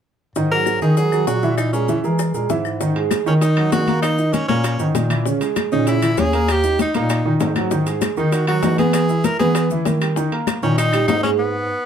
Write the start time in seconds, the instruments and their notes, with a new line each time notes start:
0.36 bass clarinet G#2, grand piano D#3 D#4 D#5, high bongo, maracas
0.51 grand piano F#3 F#4 G#4, tenor saxophone A#4
0.66 high bongo, claves, maracas
0.82 bass clarinet D#3, grand piano D#3 D#4 D#5, tenor saxophone G#4, maracas
0.97 grand piano F#3 F#4 G#4, tenor saxophone G#4, high bongo, maracas
1.12 grand piano F#3 F#4 G#4, claves, maracas
1.27 bass clarinet A#2, tenor saxophone F#4, high bongo, low bongo, maracas
1.43 grand piano E3 E4 E5, maracas
1.57 tenor saxophone D#4, high bongo, claves, maracas
1.73 grand piano G#3 G#4 A#4, tenor saxophone C#4, maracas
1.88 grand piano E3 E4 E5, high bongo, maracas
2.04 bass clarinet E3, grand piano G#3 G#4 A#4, high bongo, maracas
2.19 high bongo, claves, maracas
2.34 bass clarinet A#2, grand piano G#3 G#4 A#4, high bongo, maracas
2.50 bass clarinet G#2, grand piano E3 E4 E5, high bongo, low bongo, maracas
2.65 high bongo, claves, maracas
2.80 grand piano D#3 D#4, high bongo, high conga, maracas
2.96 grand piano G#3 G#4, high conga, high timbale
3.11 high bongo, high conga, high timbale, claves, maracas
3.26 grand piano D#3 D#4, bass clarinet D#3, tenor saxophone C#4, high conga, maracas
3.41 tenor saxophone D#4, high bongo, high conga, high timbale, maracas
3.57 grand piano F#3 F#4, high conga, high timbale, claves
3.72 bass clarinet D#3, grand piano D#4 D#5, tenor saxophone F#4, high bongo, low bongo, high conga, high timbale, low timbale, maracas
3.87 grand piano A#3 A#4, high conga, high timbale, maracas
4.02 tenor saxophone D#4, high bongo, high conga, high timbale, claves, maracas
4.18 grand piano D#4 D#5, high conga, maracas
4.32 tenor saxophone C#4, high bongo, high conga, high timbale, maracas
4.48 bass clarinet A#2, grand piano A#3 A#4, tenor saxophone C#4, high bongo, high conga, high timbale, maracas
4.64 high bongo, high timbale, claves, maracas
4.79 bass clarinet G#2, grand piano D#3 D#4, high bongo, high conga, maracas
4.95 bass clarinet A#2, high bongo, low bongo, high conga, high timbale, maracas
5.10 grand piano E3 E4, high bongo, high timbale, claves, maracas
5.26 grand piano C#3 C#4, high bongo, high conga, maracas
5.41 grand piano G#3 G#4, high conga, high timbale, maracas
5.56 high bongo, high conga, high timbale, claves, maracas
5.71 bass clarinet A#2, grand piano C#3 C#4, tenor saxophone D#4, high conga, maracas
5.87 tenor saxophone E4, high bongo, high conga, high timbale, maracas
6.02 grand piano E3 E4, high conga, high timbale, claves, maracas
6.17 bass clarinet D#2, grand piano C#4 C#5, tenor saxophone G#4, high bongo, low bongo, high conga, high timbale, maracas
6.33 grand piano A#3 A#4, high timbale, maracas
6.48 tenor saxophone G4, high bongo, high conga, high timbale, claves, maracas
6.64 grand piano D#4 D#5, high conga, maracas
6.79 tenor saxophone D#4, high bongo, high conga, high timbale, maracas
6.94 bass clarinet A#2, grand piano A#3 A#4, tenor saxophone D#4, high bongo, high conga, high timbale, maracas
7.09 high bongo, high conga, high timbale, claves, maracas
7.25 bass clarinet A#2, grand piano D#3 D#4, high bongo, high conga
7.40 bass clarinet G#2, high bongo, low bongo, high conga, high timbale, low timbale, maracas
7.56 grand piano F#3 F#4, high bongo, high conga, high timbale, claves, maracas
7.71 grand piano D#3 D#4, high bongo, high conga, maracas
7.86 grand piano G#3 G#4, high conga, high timbale, maracas
8.01 high bongo, high conga, high timbale, claves, maracas
8.17 bass clarinet D#3, grand piano D#3 D#4, tenor saxophone D#4, high conga, maracas
8.32 tenor saxophone F#4, high bongo, high conga, high timbale, maracas
8.47 grand piano F#3 F#4, tenor saxophone F#4, high conga, high timbale, claves
8.63 bass clarinet E3, grand piano D#4 D#5, high bongo, low bongo, high conga, high timbale, low timbale, maracas
8.78 grand piano B3 B4, tenor saxophone G#4, high conga, high timbale, maracas
8.93 tenor saxophone G#4, high bongo, high conga, high timbale, claves, maracas
9.09 grand piano E4 E5, high conga, maracas
9.24 tenor saxophone A#4, high bongo, high conga, high timbale, maracas
9.39 bass clarinet E3, grand piano B3 B4, tenor saxophone G#4, high bongo, high conga, high timbale, maracas
9.55 high bongo, high conga, high timbale, claves, maracas
9.70 grand piano E3 E4, high bongo, high conga, maracas
9.85 bass clarinet D#3, high bongo, low bongo, high conga, high timbale, maracas
10.01 grand piano G3 G4, high bongo, high timbale, claves, maracas
10.16 grand piano D#3 D#4, high bongo, high conga, maracas
10.32 grand piano A#3 A#4, high conga, high timbale
10.47 high bongo, high conga, high timbale, claves, maracas
10.62 bass clarinet A#2, grand piano D#3 D#4, tenor saxophone C#4, high conga, maracas
10.78 tenor saxophone D#4, high bongo, high conga, high timbale, maracas
10.93 grand piano G3 G4, high conga, high timbale, claves, maracas
11.08 bass clarinet G#2, tenor saxophone D#4, grand piano D#4 D#5, high bongo, low bongo, high conga, high timbale, low timbale, maracas
11.23 grand piano G#3 G#4, tenor saxophone C#4, high conga, high timbale, maracas
11.38 tenor saxophone B3